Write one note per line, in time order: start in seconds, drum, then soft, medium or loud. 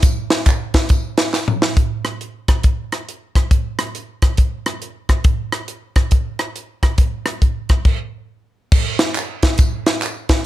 0.02 kick loud
0.02 closed hi-hat loud
0.02 tambourine loud
0.30 snare loud
0.30 closed hi-hat medium
0.30 tambourine medium
0.46 kick medium
0.46 clap medium
0.46 closed hi-hat medium
0.46 tambourine medium
0.74 kick loud
0.74 snare loud
0.74 closed hi-hat medium
0.74 tambourine medium
0.89 kick loud
0.89 closed hi-hat medium
0.89 tambourine medium
1.17 snare loud
1.17 closed hi-hat medium
1.17 tambourine medium
1.33 snare medium
1.33 clap medium
1.33 tambourine medium
1.48 mid tom medium
1.62 snare loud
1.62 tambourine medium
1.77 kick medium
1.77 closed hi-hat medium
2.05 cross-stick loud
2.05 closed hi-hat medium
2.21 closed hi-hat medium
2.48 kick medium
2.48 cross-stick loud
2.48 closed hi-hat medium
2.63 kick medium
2.63 closed hi-hat medium
2.92 cross-stick medium
2.92 closed hi-hat medium
3.09 closed hi-hat medium
3.35 kick medium
3.35 cross-stick medium
3.35 closed hi-hat medium
3.51 kick loud
3.51 closed hi-hat medium
3.79 cross-stick loud
3.79 closed hi-hat medium
3.95 closed hi-hat medium
4.22 kick medium
4.22 cross-stick medium
4.22 closed hi-hat medium
4.37 kick medium
4.37 closed hi-hat medium
4.66 cross-stick medium
4.66 closed hi-hat medium
4.82 closed hi-hat medium
5.09 kick medium
5.09 cross-stick medium
5.09 closed hi-hat medium
5.24 kick loud
5.24 closed hi-hat medium
5.52 cross-stick loud
5.52 closed hi-hat medium
5.68 closed hi-hat medium
5.96 kick medium
5.96 cross-stick medium
5.96 closed hi-hat medium
6.11 kick medium
6.11 closed hi-hat medium
6.39 cross-stick medium
6.39 closed hi-hat medium
6.56 closed hi-hat medium
6.83 kick medium
6.83 cross-stick loud
6.83 closed hi-hat medium
6.98 kick loud
6.98 closed hi-hat medium
7.26 cross-stick loud
7.26 closed hi-hat medium
7.42 kick medium
7.42 closed hi-hat medium
7.69 kick medium
7.69 cross-stick medium
7.69 closed hi-hat medium
7.85 kick medium
7.85 crash medium
8.72 kick loud
8.72 crash loud
8.72 tambourine loud
8.99 snare loud
8.99 closed hi-hat medium
8.99 tambourine medium
9.15 clap medium
9.15 closed hi-hat medium
9.15 tambourine medium
9.43 kick loud
9.43 snare loud
9.43 closed hi-hat medium
9.43 tambourine medium
9.58 kick loud
9.58 closed hi-hat loud
9.58 tambourine medium
9.86 snare loud
9.86 closed hi-hat medium
9.86 tambourine medium
10.02 clap medium
10.02 closed hi-hat medium
10.02 tambourine loud
10.29 kick medium
10.29 snare loud
10.29 closed hi-hat medium
10.29 tambourine medium